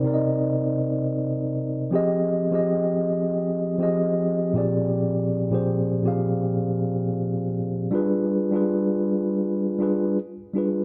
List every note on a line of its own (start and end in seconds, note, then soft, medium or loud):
0.00 0.03 C3 medium
0.00 1.34 C3 medium
0.00 0.04 C4 medium
0.00 0.06 D#4 medium
0.00 0.06 A#4 medium
0.00 1.93 C5 medium
0.00 0.07 D5 loud
0.04 1.34 C4 medium
0.04 1.35 D#4 medium
0.04 1.35 A#4 medium
0.04 0.13 D5 medium
0.14 1.39 D#5 medium
1.91 2.41 F3 medium
1.91 2.41 C4 medium
1.91 2.42 G4 medium
1.91 2.43 G#4 medium
1.95 2.43 D#5 loud
2.51 3.62 F3 medium
2.51 3.63 C4 medium
2.51 3.63 G4 medium
2.51 3.64 G#4 medium
2.55 3.64 D#5 medium
3.78 4.44 F3 medium
3.78 4.45 C4 medium
3.78 4.46 G4 medium
3.78 4.46 G#4 medium
3.83 4.47 D#5 medium
4.53 5.34 A#2 medium
4.53 5.35 F3 medium
4.53 5.35 C4 medium
4.53 5.36 G4 medium
4.53 5.36 G#4 medium
4.58 5.36 D5 medium
5.50 5.96 A#2 medium
5.50 5.97 F3 medium
5.50 5.97 C4 medium
5.50 5.98 G4 medium
5.50 5.98 G#4 medium
5.55 5.99 C5 medium
6.03 7.34 A#2 medium
6.03 7.34 F3 medium
6.03 7.35 C4 medium
6.03 7.35 G4 medium
6.03 7.35 G#4 medium
6.08 7.36 F5 medium
7.91 8.41 G3 medium
7.91 8.41 D4 medium
7.91 8.42 F4 medium
7.91 8.42 G#4 medium
7.95 8.43 B4 loud
8.51 9.62 G3 medium
8.51 9.63 D4 medium
8.51 9.64 F4 medium
8.51 9.64 G#4 medium
8.56 9.65 B4 medium
9.79 10.16 G3 medium
9.79 10.17 D4 medium
9.79 10.17 F4 medium
9.79 10.18 G#4 medium
9.83 10.18 B4 medium
10.54 10.85 G3 medium
10.54 10.85 D4 medium
10.54 10.85 F4 medium
10.54 10.85 G#4 medium
10.58 10.85 B4 medium